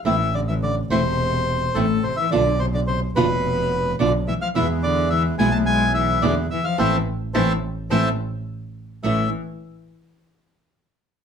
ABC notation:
X:1
M:4/4
L:1/16
Q:1/4=107
K:Am
V:1 name="Bandoneon"
e2 d e d2 c6 A2 c e | d2 c d c2 B6 d2 e f | e2 d2 e2 ^g a g2 e2 d2 e f | [cea]2 z2 [cea]2 z2 [cea]2 z6 |
e2 z12 z2 |]
V:2 name="Bandoneon"
z16 | z16 | [^G,B,E]6 [G,B,E]6 [G,B,E]2 z2 | [A,CE]2 z2 [A,CE]2 z2 [A,CE]2 z6 |
[A,^CE]2 z12 z2 |]
V:3 name="Nylon-string guitar"
[E,A,CE]2 z4 [E,A,CE]2 z4 [E,A,CE]2 z2 | [B,,D,B,DF]2 z4 [B,,D,B,DF]2 z4 [B,,D,B,DF]2 z2 | [B,,E,^G,B,E]2 z4 [B,,E,G,B,E]2 z4 [B,,E,G,B,E]2 z2 | [E,A,C]2 z2 [E,A,C]2 z2 [E,A,C]2 z6 |
[A,,E,A,^CE]2 z12 z2 |]
V:4 name="Cello" clef=bass
E,2 D, E, D,2 C,6 A,,2 C, E, | D,2 C, D, C,2 B,,6 D,2 E, F, | E,2 D,2 E,2 ^G, A, G,2 E,2 D,2 E, F, | E,2 z2 E,2 z2 E,2 z6 |
E,2 z12 z2 |]
V:5 name="Double bass" clef=bass
A,,,6 E,,,6 A,,,2 z2 | B,,,6 F,,,6 B,,,2 z2 | E,,6 B,,,6 E,,2 z2 | A,,,2 z2 A,,,2 z2 A,,,2 z6 |
A,,,2 z12 z2 |]